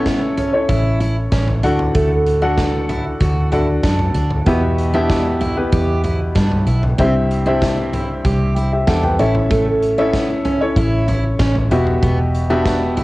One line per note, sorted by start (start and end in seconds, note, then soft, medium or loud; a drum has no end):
0.00 0.65 A1 medium
0.00 0.20 B3 medium
0.00 0.53 C#4 medium
0.00 0.53 E4 medium
0.00 0.53 A4 medium
0.00 0.50 C#5 loud
0.00 1.66 E5 loud
0.06 kick medium
0.06 snare loud
0.06 closed hi-hat medium
0.37 0.52 C#4 medium
0.37 closed hi-hat medium
0.37 floor tom medium
0.53 1.63 C#4 medium
0.53 1.64 E4 medium
0.53 1.62 A4 medium
0.53 1.64 C#5 medium
0.69 1.28 A1 loud
0.69 0.99 E4 medium
0.69 kick loud
0.69 closed hi-hat medium
1.00 1.15 E4 medium
1.00 closed hi-hat medium
1.32 1.61 A1 loud
1.32 1.47 C#4 medium
1.32 kick loud
1.32 snare loud
1.32 closed hi-hat medium
1.48 floor tom medium
1.63 1.93 D2 medium
1.63 2.54 A2 medium
1.63 1.78 D4 medium
1.63 2.38 D4 medium
1.63 2.38 F#4 medium
1.63 2.38 A4 medium
1.63 2.39 F#5 medium
1.63 closed hi-hat medium
1.79 floor tom medium
1.95 3.17 D2 loud
1.95 2.10 A3 loud
1.95 kick loud
1.95 closed hi-hat medium
2.26 closed hi-hat medium
2.42 2.72 D4 medium
2.42 3.47 D4 medium
2.42 3.47 F#4 medium
2.42 3.47 A4 medium
2.42 3.47 F#5 medium
2.58 kick medium
2.58 snare loud
2.58 closed hi-hat medium
2.89 3.04 E4 medium
2.89 closed hi-hat medium
2.89 floor tom medium
3.20 3.80 D2 medium
3.20 3.51 F#4 medium
3.20 kick loud
3.20 closed hi-hat medium
3.52 4.42 D4 medium
3.52 3.67 E4 medium
3.52 4.42 F#4 medium
3.52 4.42 A4 medium
3.52 4.42 F#5 medium
3.52 closed hi-hat medium
3.52 floor tom medium
3.83 4.13 F#2 medium
3.83 3.99 D4 medium
3.83 kick loud
3.83 snare loud
3.83 closed hi-hat medium
4.00 floor tom medium
4.15 4.45 D2 medium
4.15 4.30 D4 medium
4.15 closed hi-hat medium
4.31 floor tom medium
4.46 5.69 E2 loud
4.46 5.38 B2 medium
4.46 4.62 B3 medium
4.46 4.92 B3 medium
4.46 4.92 E4 medium
4.46 4.92 G4 medium
4.46 4.92 E5 medium
4.46 kick loud
4.46 closed hi-hat medium
4.78 closed hi-hat medium
4.94 5.54 B3 medium
4.94 5.24 D4 medium
4.94 5.54 E4 medium
4.94 5.54 G4 medium
4.94 5.54 E5 loud
5.10 kick loud
5.10 snare medium
5.10 closed hi-hat medium
5.41 5.56 E4 medium
5.41 closed hi-hat medium
5.41 floor tom medium
5.57 6.77 B3 medium
5.57 6.77 E4 medium
5.57 6.77 G4 medium
5.57 6.77 B4 medium
5.72 6.32 E2 medium
5.72 6.03 G4 medium
5.72 kick loud
5.72 closed hi-hat medium
6.04 6.19 E4 medium
6.04 closed hi-hat medium
6.04 floor tom medium
6.35 6.65 G2 loud
6.35 6.50 D4 medium
6.35 kick loud
6.35 snare loud
6.35 closed hi-hat medium
6.52 floor tom medium
6.67 6.96 B1 medium
6.67 6.82 E4 medium
6.67 closed hi-hat medium
6.83 floor tom medium
6.98 8.21 C2 medium
6.98 7.90 G2 medium
6.98 7.14 C4 loud
6.98 7.44 C4 medium
6.98 7.44 E4 medium
6.98 7.44 G4 medium
6.98 7.44 E5 medium
6.98 kick loud
6.98 closed hi-hat medium
7.30 closed hi-hat medium
7.46 8.51 C4 medium
7.46 7.76 D4 medium
7.46 8.51 E4 medium
7.46 8.51 G4 medium
7.46 8.51 E5 medium
7.62 kick medium
7.62 snare loud
7.62 closed hi-hat loud
7.93 8.08 E4 medium
7.93 closed hi-hat medium
7.93 floor tom medium
8.25 8.84 C2 loud
8.25 8.55 G4 medium
8.25 kick loud
8.25 closed hi-hat medium
8.56 8.71 E4 medium
8.56 closed hi-hat medium
8.73 8.88 G4 medium
8.73 8.87 E5 medium
8.87 9.17 E2 medium
8.87 9.03 D4 medium
8.87 9.03 A4 medium
8.87 9.03 F#5 medium
8.87 kick loud
8.87 snare loud
8.87 closed hi-hat medium
9.03 9.34 B4 medium
9.03 9.34 G5 medium
9.03 floor tom medium
9.19 10.73 A1 medium
9.19 9.94 C#4 medium
9.19 9.34 E4 medium
9.19 9.94 E4 medium
9.19 9.94 A4 medium
9.19 9.94 E5 medium
9.19 closed hi-hat medium
9.35 floor tom medium
9.50 9.66 A3 loud
9.50 kick loud
9.50 closed hi-hat medium
9.82 closed hi-hat medium
9.98 10.28 B3 medium
9.98 10.58 C#4 medium
9.98 10.58 E4 medium
9.98 10.58 A4 medium
9.98 10.58 E5 loud
10.13 kick medium
10.13 snare loud
10.13 closed hi-hat medium
10.45 10.60 C#4 medium
10.45 closed hi-hat medium
10.45 floor tom medium
10.61 11.71 C#4 medium
10.61 11.71 E4 medium
10.61 11.71 A4 medium
10.61 11.71 C#5 medium
10.76 11.36 A1 loud
10.76 11.07 E4 loud
10.76 kick loud
10.76 closed hi-hat medium
11.08 11.23 E4 medium
11.08 closed hi-hat medium
11.08 floor tom medium
11.39 11.69 A1 medium
11.39 11.55 C#4 medium
11.39 kick loud
11.39 snare loud
11.39 closed hi-hat medium
11.55 floor tom medium
11.71 12.00 E1 medium
11.71 12.62 B2 medium
11.71 12.46 B3 medium
11.71 11.86 E4 medium
11.71 12.46 F#4 medium
11.71 12.46 G4 medium
11.71 12.46 E5 medium
11.71 closed hi-hat medium
11.87 floor tom medium
12.03 13.04 E1 loud
12.03 12.18 B3 loud
12.03 kick loud
12.03 closed hi-hat medium
12.34 closed hi-hat medium
12.50 13.04 B3 medium
12.50 12.80 D4 medium
12.50 13.04 F#4 medium
12.50 13.04 G4 medium
12.50 13.04 E5 loud
12.66 kick medium
12.66 snare loud
12.66 closed hi-hat loud
12.97 13.04 E4 medium
12.97 closed hi-hat medium
12.97 floor tom medium